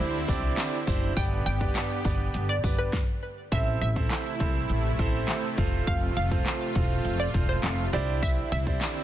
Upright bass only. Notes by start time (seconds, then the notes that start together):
0.00 D2
0.29 C2
0.88 F#1
1.17 G1
1.46 G1
2.05 G1
2.34 G1
2.64 G1
3.52 A1
3.81 A1
4.40 C2
4.70 A1
4.99 A1
5.58 F1
5.87 F1
6.17 F1
6.76 E1
7.05 F1
7.34 E1
7.64 F1
7.93 C2
8.52 C2